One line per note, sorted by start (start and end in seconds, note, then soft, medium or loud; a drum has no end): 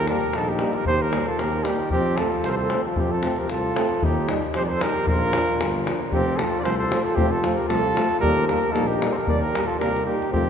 0.00 0.12 D#2 medium
0.07 0.18 G3 medium
0.07 0.19 A#3 medium
0.07 0.37 G4 medium
0.07 0.38 A#4 medium
0.07 davul high medium
0.21 davul high soft
0.33 0.64 A#1 medium
0.33 0.50 D#4 medium
0.33 0.50 A4 medium
0.33 davul high medium
0.49 0.76 D#4 medium
0.49 0.76 G4 medium
0.59 0.71 G3 medium
0.59 0.72 A#3 medium
0.59 davul high medium
0.73 0.86 G4 medium
0.73 0.86 A#4 medium
0.73 davul high soft
0.85 1.17 D#2 loud
0.85 1.02 G4 medium
0.85 1.03 C5 loud
0.85 davul low medium
1.00 1.28 G4 medium
1.00 1.29 A#4 medium
1.00 davul high soft
1.12 1.23 G3 medium
1.12 1.24 A#3 medium
1.12 davul high medium
1.26 1.42 F4 medium
1.26 1.41 A4 medium
1.26 davul high soft
1.39 1.69 D#2 medium
1.39 1.66 G4 medium
1.39 1.65 A#4 medium
1.39 davul high medium
1.53 davul high soft
1.63 1.76 G3 medium
1.63 1.77 A#3 medium
1.63 1.91 D#4 medium
1.63 1.91 G4 medium
1.63 davul high medium
1.79 davul high soft
1.90 2.22 F2 medium
1.90 2.20 C4 medium
1.90 2.18 G4 loud
1.90 davul low medium
2.17 2.29 A3 medium
2.17 2.29 C4 medium
2.17 2.48 F4 medium
2.17 2.46 A4 medium
2.17 davul high medium
2.32 davul high soft
2.44 2.74 C2 medium
2.44 2.51 A4 medium
2.44 2.52 A#4 medium
2.44 2.49 C5 medium
2.44 davul high medium
2.50 2.55 G4 medium
2.50 2.56 C5 loud
2.54 2.60 A4 medium
2.54 2.82 C5 medium
2.61 2.85 A4 medium
2.70 2.81 A3 medium
2.70 2.82 C4 medium
2.70 davul high medium
2.84 3.02 F4 medium
2.84 2.99 A4 medium
2.96 3.26 F2 medium
2.96 3.13 G4 medium
2.96 davul low medium
3.01 3.15 C4 medium
3.12 3.40 F4 medium
3.12 3.41 A4 medium
3.22 3.33 A3 medium
3.22 3.35 C4 medium
3.22 davul high medium
3.36 3.50 G4 medium
3.36 3.51 A#4 medium
3.36 davul high soft
3.49 3.79 C2 medium
3.49 4.05 F4 medium
3.49 4.06 A4 medium
3.49 davul high medium
3.76 3.86 A3 medium
3.76 3.87 C4 medium
3.76 davul high medium
3.89 davul high soft
4.02 4.31 D#2 medium
4.02 4.30 D#4 medium
4.02 4.30 G4 medium
4.02 davul low loud
4.29 4.39 G3 medium
4.29 4.39 D#4 medium
4.29 davul high medium
4.42 davul high soft
4.54 4.84 F2 medium
4.54 4.66 G4 medium
4.54 4.65 C5 medium
4.54 davul high medium
4.65 4.74 A#4 soft
4.65 4.71 D5 medium
4.69 4.86 A4 medium
4.69 4.84 C5 medium
4.81 4.92 G3 medium
4.81 4.92 D#4 medium
4.81 5.09 G4 medium
4.81 5.07 A#4 loud
4.81 davul high medium
4.95 davul high soft
5.07 5.37 A#1 medium
5.07 5.83 F4 medium
5.07 5.83 A#4 loud
5.07 davul low loud
5.33 5.45 F3 medium
5.33 5.45 D4 medium
5.33 davul high medium
5.48 davul high soft
5.60 5.89 G1 medium
5.60 davul high medium
5.75 davul high soft
5.86 5.97 F3 soft
5.86 5.97 D4 medium
5.86 davul high medium
6.01 davul high soft
6.11 6.42 F1 medium
6.11 6.23 F3 medium
6.11 6.23 A3 medium
6.11 6.40 C4 medium
6.11 6.38 G4 loud
6.11 davul low medium
6.37 6.49 F3 medium
6.37 6.50 A3 medium
6.37 6.64 F4 medium
6.37 6.62 A4 medium
6.37 davul high medium
6.53 davul high soft
6.60 6.66 A#4 medium
6.60 6.77 C5 loud
6.60 6.66 D5 medium
6.64 6.94 C2 medium
6.64 6.75 F3 medium
6.64 6.77 A3 medium
6.64 6.78 A4 medium
6.64 davul high medium
6.78 7.01 A4 medium
6.78 7.03 C5 medium
6.89 7.00 F3 medium
6.89 7.02 A3 medium
6.89 davul high medium
7.02 7.17 F4 medium
7.02 7.18 A4 loud
7.06 davul high soft
7.16 7.46 F1 medium
7.16 7.28 F3 medium
7.16 7.28 A3 medium
7.16 7.30 C4 medium
7.16 7.33 G4 loud
7.16 davul low loud
7.28 7.55 F4 medium
7.28 7.59 A4 medium
7.44 7.54 F3 medium
7.44 7.55 A3 medium
7.44 davul high medium
7.53 7.68 G4 medium
7.53 7.68 A#4 medium
7.58 davul high soft
7.68 7.99 C2 medium
7.68 7.80 F3 medium
7.68 7.80 A3 medium
7.68 8.18 F4 medium
7.68 8.18 A4 loud
7.68 davul high medium
7.95 8.06 F3 medium
7.95 8.07 A3 medium
7.95 davul high medium
8.11 davul high soft
8.20 8.52 D#2 medium
8.20 8.32 G3 medium
8.20 8.32 A#3 medium
8.20 8.45 G4 loud
8.20 8.46 A#4 loud
8.20 davul low medium
8.46 8.59 G3 medium
8.46 8.59 A#3 medium
8.46 8.73 G4 medium
8.46 8.74 A#4 medium
8.46 davul high medium
8.63 davul high soft
8.71 8.84 G3 medium
8.71 8.85 A#3 medium
8.71 8.87 D#4 medium
8.71 8.89 A4 loud
8.76 9.05 A#1 medium
8.76 davul high medium
8.87 9.12 D#4 medium
8.87 9.13 G4 medium
9.00 9.11 G3 medium
9.00 9.11 A#3 medium
9.00 davul high medium
9.10 9.25 G4 medium
9.10 9.15 A4 soft
9.10 9.28 A#4 medium
9.10 9.15 C5 medium
9.16 davul high soft
9.25 9.56 D#2 medium
9.25 9.38 G3 medium
9.25 9.37 A#3 medium
9.25 9.27 G4 medium
9.25 9.40 A#4 medium
9.25 9.42 D5 medium
9.25 davul low loud
9.38 9.67 G4 medium
9.38 9.68 A#4 medium
9.53 9.64 G3 medium
9.53 9.64 A#3 medium
9.53 davul high medium
9.65 9.78 F4 medium
9.65 9.79 A4 medium
9.69 davul high soft
9.79 10.09 C2 medium
9.79 9.90 G3 medium
9.79 9.91 A#3 medium
9.79 10.04 G4 medium
9.79 10.04 A#4 loud
9.79 davul high medium
9.96 davul high soft
10.05 10.16 G3 medium
10.05 10.17 A#3 medium
10.05 10.30 D#4 medium
10.05 10.30 G4 medium
10.22 davul high soft
10.30 10.50 F2 medium
10.30 10.43 F3 medium
10.30 10.43 A3 medium
10.30 10.50 C4 medium
10.30 10.50 G4 medium
10.30 davul low medium